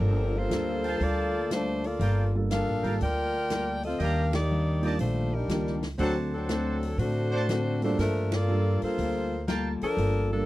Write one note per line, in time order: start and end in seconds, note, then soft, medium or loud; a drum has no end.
0.00 0.46 G1 medium
0.00 0.35 F3 medium
0.00 0.35 G3 soft
0.00 0.36 A#3 soft
0.00 0.35 D4 medium
0.00 0.36 F4 medium
0.00 0.35 A4 medium
0.00 0.37 A4 soft
0.00 0.35 A#4 medium
0.37 1.02 A#3 medium
0.37 1.02 F4 medium
0.37 1.02 A4 medium
0.37 1.02 C5 loud
0.49 0.96 D2 medium
0.49 1.26 G3 medium
0.49 0.85 G3 medium
0.49 1.26 A#3 medium
0.49 0.86 A#3 medium
0.49 1.26 D4 medium
0.49 1.27 F4 medium
0.49 0.86 F4 medium
0.49 1.27 A4 medium
0.49 0.86 A4 medium
0.49 snare medium
0.49 closed hi-hat medium
0.84 1.47 F5 medium
0.84 1.47 G5 medium
0.84 1.47 A5 medium
0.84 open hi-hat soft
1.00 1.96 D2 medium
1.00 1.35 G3 soft
1.00 1.36 A#3 soft
1.00 1.52 A#3 loud
1.00 1.36 F4 soft
1.00 1.52 F4 loud
1.00 1.37 A4 soft
1.00 1.52 A4 loud
1.00 1.52 D5 loud
1.00 open hi-hat soft
1.50 1.85 G3 medium
1.50 1.83 A3 medium
1.50 1.85 A#3 medium
1.50 1.83 D4 medium
1.50 1.86 F4 medium
1.50 1.83 F4 medium
1.50 1.86 A4 medium
1.50 1.83 C5 medium
1.50 snare medium
1.50 closed hi-hat medium
1.84 2.34 A#3 medium
1.84 2.35 F4 medium
1.84 2.35 A4 medium
1.84 2.34 D5 loud
1.84 open hi-hat soft
1.99 2.62 G1 medium
1.99 2.35 G3 soft
1.99 2.35 A#3 medium
1.99 2.36 F4 medium
1.99 2.37 A4 medium
1.99 2.23 A#4 medium
1.99 2.23 F5 medium
1.99 2.23 G5 medium
1.99 2.23 A5 medium
1.99 open hi-hat soft
2.35 2.49 G3 medium
2.35 2.49 A#3 medium
2.35 2.49 D4 medium
2.35 2.49 F4 soft
2.35 2.50 A4 medium
2.50 2.85 G3 medium
2.50 2.85 A#3 medium
2.50 2.98 D4 medium
2.50 2.86 F4 medium
2.50 2.98 A4 medium
2.50 2.86 A4 medium
2.50 2.98 A#4 medium
2.50 2.98 F5 loud
2.50 snare medium
2.50 closed hi-hat medium
2.67 2.82 A1 medium
2.83 2.99 G#1 medium
2.83 2.98 G3 medium
2.83 2.99 A#3 medium
2.83 2.99 D4 soft
2.83 2.99 F4 soft
2.83 2.94 A#4 medium
2.83 2.99 A#4 medium
2.83 2.95 F5 medium
2.83 2.95 G5 medium
2.83 2.95 A5 medium
2.83 open hi-hat soft
3.00 3.96 D2 medium
3.00 3.35 G3 soft
3.00 3.36 A#3 soft
3.00 3.36 F4 soft
3.00 3.81 F4 loud
3.00 3.37 A4 soft
3.00 3.81 A#4 medium
3.00 3.80 D5 medium
3.00 3.81 G5 loud
3.00 open hi-hat soft
3.50 3.85 G3 medium
3.50 3.85 A#3 medium
3.50 3.86 F4 medium
3.50 3.86 A4 medium
3.50 snare medium
3.50 closed hi-hat medium
3.83 4.00 C4 medium
3.83 4.00 F4 medium
3.83 4.00 A4 medium
3.83 4.00 D#5 medium
3.83 open hi-hat soft
3.99 4.95 D#2 medium
3.99 4.34 D#3 soft
3.99 4.35 G3 soft
3.99 4.36 A#3 soft
3.99 4.34 D4 medium
3.99 4.36 D4 soft
3.99 4.33 G4 medium
3.99 4.34 A#4 medium
3.99 4.22 D5 medium
3.99 4.22 D#5 medium
3.99 4.34 F5 loud
3.99 4.22 G5 medium
3.99 4.22 A#5 medium
3.99 open hi-hat soft
4.33 4.96 A#3 medium
4.33 4.96 D#4 medium
4.33 4.96 G4 medium
4.33 4.96 D5 medium
4.33 snare medium
4.33 ride medium
4.50 4.85 D#3 medium
4.50 4.85 G3 medium
4.50 4.85 A#3 medium
4.50 4.86 D4 medium
4.82 4.97 G3 medium
4.82 4.98 A#3 medium
4.82 4.98 D4 medium
4.82 4.98 D#4 medium
4.82 4.98 F4 medium
4.82 4.94 D5 medium
4.82 4.94 D#5 medium
4.82 4.94 G5 medium
4.82 4.94 A5 medium
4.82 open hi-hat soft
4.99 5.46 A#1 medium
4.99 5.34 D#3 soft
4.99 5.35 G3 soft
4.99 5.33 A3 medium
4.99 5.35 A#3 soft
4.99 5.33 D4 medium
4.99 5.36 D4 soft
4.99 5.33 F4 medium
4.99 5.33 C5 medium
4.99 open hi-hat soft
5.34 5.83 G3 medium
5.34 5.83 D4 medium
5.34 5.83 D#4 medium
5.34 5.83 A#4 medium
5.48 5.95 C#2 medium
5.48 5.84 D#3 medium
5.48 5.80 G3 medium
5.48 5.85 G3 medium
5.48 5.79 A#3 medium
5.48 5.85 A#3 medium
5.48 5.80 D4 soft
5.48 5.86 D4 medium
5.48 5.80 D#4 soft
5.48 5.80 F4 medium
5.48 snare medium
5.48 closed hi-hat medium
5.67 snare soft
5.82 snare soft
5.82 open hi-hat soft
5.98 6.94 D2 loud
5.98 6.34 D3 soft
5.98 6.29 F#3 medium
5.98 6.15 F#3 medium
5.98 6.29 A3 medium
5.98 6.35 A3 soft
5.98 6.29 C4 medium
5.98 6.15 C4 medium
5.98 6.35 C4 medium
5.98 6.29 D4 medium
5.98 6.15 D4 medium
5.98 6.29 F#4 medium
5.98 6.36 F#4 soft
5.98 6.15 A4 medium
5.98 6.75 C5 medium
5.98 6.75 D5 medium
5.98 6.75 F#5 medium
5.98 6.75 A5 loud
5.98 open hi-hat soft
6.34 6.96 F#3 medium
6.34 6.96 C4 medium
6.34 6.96 D4 medium
6.34 6.96 A4 medium
6.49 6.84 D3 medium
6.49 6.84 A3 medium
6.49 6.84 C4 medium
6.49 6.85 F#4 medium
6.49 snare medium
6.49 closed hi-hat soft
6.83 open hi-hat soft
6.98 7.94 A2 medium
6.98 7.34 D3 soft
6.98 7.82 A3 medium
6.98 7.34 A3 soft
6.98 7.35 C4 soft
6.98 7.82 D4 medium
6.98 7.82 F#4 medium
6.98 7.35 F#4 soft
6.98 7.82 C5 loud
6.98 open hi-hat soft
7.31 7.43 C5 medium
7.31 7.43 D5 medium
7.31 7.43 F#5 medium
7.31 7.43 A5 medium
7.48 7.83 D3 medium
7.48 7.84 A3 medium
7.48 7.84 C4 medium
7.48 7.84 F#4 medium
7.48 snare medium
7.48 closed hi-hat medium
7.82 7.97 G3 medium
7.82 7.98 A3 medium
7.82 7.97 A#3 medium
7.82 7.97 D4 medium
7.82 7.98 D4 medium
7.82 7.97 F4 medium
7.82 7.98 F#4 medium
7.82 7.97 A4 medium
7.82 7.98 C5 medium
7.82 open hi-hat soft
7.98 8.78 G2 medium
7.98 8.30 F3 medium
7.98 8.33 G3 soft
7.98 8.30 A3 medium
7.98 8.34 A#3 soft
7.98 8.31 D4 medium
7.98 8.34 F4 medium
7.98 8.35 A4 medium
7.98 8.30 A#4 medium
7.98 snare soft
7.98 open hi-hat medium
8.32 8.83 A#3 medium
8.32 8.83 F4 medium
8.32 8.83 A4 medium
8.32 8.83 D5 medium
8.32 snare medium
8.32 ride medium
8.48 9.25 G3 medium
8.48 8.83 G3 medium
8.48 9.25 A#3 medium
8.48 8.84 A#3 medium
8.48 9.25 D4 medium
8.48 9.25 F4 medium
8.48 8.84 F4 medium
8.48 9.25 A4 medium
8.48 8.85 A4 medium
8.82 9.45 A#3 medium
8.82 9.45 F4 medium
8.82 9.45 A4 medium
8.82 9.45 C5 medium
8.82 muted upright bass stroke soft
8.82 open hi-hat soft
8.98 9.77 D2 medium
8.98 9.33 G3 soft
8.98 9.34 A#3 soft
8.98 9.34 F4 soft
8.98 9.35 A4 soft
8.98 open hi-hat soft
9.47 9.83 G3 medium
9.47 9.83 A#3 medium
9.47 9.84 F4 medium
9.47 9.84 A4 medium
9.47 9.70 A#4 medium
9.47 9.70 F5 medium
9.47 9.70 G5 medium
9.47 9.70 A5 medium
9.47 snare medium
9.47 closed hi-hat soft
9.81 10.29 F3 medium
9.81 10.28 D4 medium
9.81 10.29 A4 loud
9.81 10.29 A#4 loud
9.81 muted upright bass stroke soft
9.81 open hi-hat soft
9.97 10.46 G1 medium
9.97 10.32 G3 medium
9.97 10.33 A#3 soft
9.97 10.33 F4 soft
9.97 10.34 A4 medium
9.97 open hi-hat soft
10.31 10.46 F3 medium
10.31 10.46 G3 medium
10.31 10.46 A#3 medium
10.31 10.46 D4 medium
10.31 10.46 F4 soft
10.31 10.46 A4 medium
10.31 10.46 A4 loud